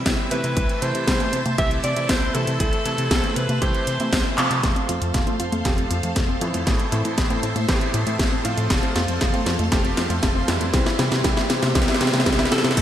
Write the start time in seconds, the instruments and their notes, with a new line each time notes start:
Already playing: electric grand piano E3 G3 C4 E4, string machine C4 E5 G5 E6
0.06 analog synth bass C2, kick, snare, closed hi-hat
0.31 analog synth bass C3, electric grand piano E3 A3 C4 E4, alto saxophone B4, closed hi-hat
0.44 analog synth bass C3, closed hi-hat
0.57 analog synth bass C2, string machine C5 A5, kick, closed hi-hat
0.69 closed hi-hat
0.82 analog synth bass C3, electric grand piano E3 A3 C4 E4, alto saxophone C5, closed hi-hat
0.95 analog synth bass C3, closed hi-hat
1.08 analog synth bass C2, kick, snare, closed hi-hat
1.20 electric grand piano E3 A3 C4 E4, closed hi-hat, high conga
1.33 analog synth bass C3, closed hi-hat
1.46 analog synth bass C3, closed hi-hat, high conga
1.58 analog synth bass C2, electric grand piano E3 A3 C4 G4, alto saxophone E5, kick, closed hi-hat
1.71 closed hi-hat
1.84 analog synth bass C3, alto saxophone D5, closed hi-hat
1.96 analog synth bass C3, electric grand piano E3 A3 C4 E4, closed hi-hat
2.09 analog synth bass C2, alto saxophone C5, kick, snare, closed hi-hat
2.34 analog synth bass C3, electric grand piano E3 A3 C4 E4, alto saxophone A4, closed hi-hat
2.47 analog synth bass C3, closed hi-hat
2.60 analog synth bass C2, alto saxophone A4, kick, closed hi-hat
2.73 closed hi-hat
2.85 analog synth bass C3, electric grand piano E3 A3 C4 E4, closed hi-hat
2.98 analog synth bass C3, closed hi-hat
3.11 analog synth bass C2, kick, snare, closed hi-hat
3.24 electric grand piano E3 A3 C4 E4, closed hi-hat, high conga
3.36 analog synth bass C3, alto saxophone B4, closed hi-hat
3.49 analog synth bass C3, closed hi-hat, high conga
3.62 analog synth bass C2, electric grand piano E3 A3 C4 G4, alto saxophone C5, kick, closed hi-hat
3.74 closed hi-hat
3.87 analog synth bass C3, closed hi-hat
4.00 analog synth bass C3, electric grand piano E3 A3 C4 E4, closed hi-hat, high conga
4.13 analog synth bass C2, kick, snare, closed hi-hat
4.38 analog synth bass C3, electric grand piano F3 A3 C4 F4, clap, closed hi-hat
4.51 analog synth bass C3, closed hi-hat
4.63 analog synth bass F1, synth arpeggio sound A3, string machine A4 C5 F5 C6, kick, snare, closed hi-hat
4.76 synth arpeggio sound C4, closed hi-hat
4.89 analog synth bass F2, electric grand piano F3 A3 C4 F4, synth arpeggio sound F4, closed hi-hat
5.02 analog synth bass F2, synth arpeggio sound A3, closed hi-hat
5.14 analog synth bass F1, synth arpeggio sound A3, kick, snare, closed hi-hat
5.27 electric grand piano F3 A3 C4 F4, synth arpeggio sound C4, closed hi-hat, high conga
5.40 analog synth bass F2, synth arpeggio sound F4, closed hi-hat
5.52 analog synth bass F2, synth arpeggio sound A3, closed hi-hat, high conga
5.65 analog synth bass F1, electric grand piano F3 A3 C4 G4, synth arpeggio sound A3, kick, snare, closed hi-hat
5.78 synth arpeggio sound C4, closed hi-hat
5.91 analog synth bass F2, synth arpeggio sound F4, closed hi-hat
6.03 analog synth bass F2, electric grand piano F3 A3 C4 F4, synth arpeggio sound A3, closed hi-hat
6.16 analog synth bass F1, synth arpeggio sound A3, kick, snare, closed hi-hat
6.29 synth arpeggio sound C4
6.41 analog synth bass F2, electric grand piano A2 E3 A3 C4 E4, synth arpeggio sound F4, closed hi-hat
6.54 analog synth bass F2, synth arpeggio sound A3, closed hi-hat
6.67 analog synth bass A1, synth arpeggio sound A3, string machine E5, kick, snare, closed hi-hat
6.80 synth arpeggio sound C4, closed hi-hat
6.92 electric grand piano A2 E3 A3 C4 E4, analog synth bass A2, synth arpeggio sound E4, closed hi-hat
7.05 analog synth bass A2, synth arpeggio sound A3, closed hi-hat
7.18 analog synth bass A1, synth arpeggio sound A3, kick, snare, closed hi-hat
7.30 electric grand piano A2 E3 A3 C4 E4, synth arpeggio sound C4, closed hi-hat, high conga
7.43 analog synth bass A2, synth arpeggio sound E4, closed hi-hat
7.56 analog synth bass A2, synth arpeggio sound A3, closed hi-hat, high conga
7.68 analog synth bass A1, electric grand piano A2 E3 A3 C4 G4, synth arpeggio sound A3, kick, snare, closed hi-hat
7.81 synth arpeggio sound C4, closed hi-hat
7.94 analog synth bass A2, synth arpeggio sound E4, closed hi-hat
8.07 electric grand piano A2 E3 A3 C4 E4, analog synth bass A2, synth arpeggio sound A3, closed hi-hat
8.19 analog synth bass A1, synth arpeggio sound A3, kick, snare, closed hi-hat
8.32 synth arpeggio sound C4
8.45 analog synth bass A2, electric grand piano F3 A3 C4 F4, synth arpeggio sound E4, closed hi-hat
8.57 analog synth bass A2, synth arpeggio sound A3, closed hi-hat
8.70 analog synth bass F1, synth arpeggio sound A3, string machine F5, kick, snare, closed hi-hat
8.83 synth arpeggio sound C4, closed hi-hat
8.96 analog synth bass F2, electric grand piano F3 A3 C4 F4, synth arpeggio sound F4, snare, closed hi-hat
9.08 analog synth bass F2, synth arpeggio sound A3, closed hi-hat
9.21 analog synth bass F1, synth arpeggio sound A3, kick, snare, closed hi-hat
9.34 electric grand piano F3 A3 C4 F4, synth arpeggio sound C4, closed hi-hat, high conga
9.46 analog synth bass F2, synth arpeggio sound F4, snare, closed hi-hat
9.59 analog synth bass F2, synth arpeggio sound A3, closed hi-hat, high conga
9.72 analog synth bass F1, electric grand piano F3 A3 C4 G4, synth arpeggio sound A3, kick, snare, closed hi-hat
9.85 synth arpeggio sound C4, closed hi-hat
9.97 analog synth bass F2, synth arpeggio sound F4, snare, closed hi-hat
10.10 analog synth bass F2, electric grand piano F3 A3 C4 F4, synth arpeggio sound A3, closed hi-hat
10.23 analog synth bass F1, synth arpeggio sound A3, kick, snare, closed hi-hat
10.35 synth arpeggio sound C4
10.48 analog synth bass F2, electric grand piano E3 G3 C4 E4, synth arpeggio sound F4, snare, closed hi-hat
10.61 analog synth bass F2, synth arpeggio sound A3, closed hi-hat
10.74 analog synth bass C2, synth arpeggio sound C4, string machine G4 C5 E5, kick, snare, closed hi-hat
10.86 synth arpeggio sound E4, snare, closed hi-hat
10.99 analog synth bass C3, electric grand piano E3 G3 C4 E4, synth arpeggio sound G4, snare, closed hi-hat
11.12 analog synth bass C3, synth arpeggio sound C4, snare, closed hi-hat
11.24 analog synth bass C2, synth arpeggio sound C4, kick, snare, closed hi-hat
11.37 electric grand piano E3 G3 C4 E4, synth arpeggio sound E4, snare, closed hi-hat, high conga
11.50 analog synth bass C3, synth arpeggio sound G4, snare, closed hi-hat
11.63 analog synth bass C3, synth arpeggio sound C4, snare, closed hi-hat, high conga
11.75 analog synth bass C2, electric grand piano E3 G3 C4 G4, synth arpeggio sound C4, kick, snare, closed hi-hat
11.82 snare
11.88 synth arpeggio sound E4, snare, closed hi-hat
11.94 snare
12.01 analog synth bass C3, electric grand piano E3 G3 C4 E4, synth arpeggio sound G4, snare, closed hi-hat
12.07 snare
12.13 analog synth bass C3, electric grand piano E3 G3 C4 E4, synth arpeggio sound C4, snare, closed hi-hat, high conga
12.20 snare
12.26 analog synth bass C2, synth arpeggio sound C4, kick, snare, closed hi-hat
12.33 snare
12.39 electric grand piano E3 G3 C4 E4, synth arpeggio sound E4, snare
12.45 snare
12.52 analog synth bass C3, synth arpeggio sound G4, alto saxophone A4, snare, closed hi-hat
12.58 snare
12.64 analog synth bass C3, synth arpeggio sound C4, snare, closed hi-hat
12.71 snare
12.77 analog synth bass A1, synth arpeggio sound A3, string machine A4 C5 E5 C6, kick, closed hi-hat, crash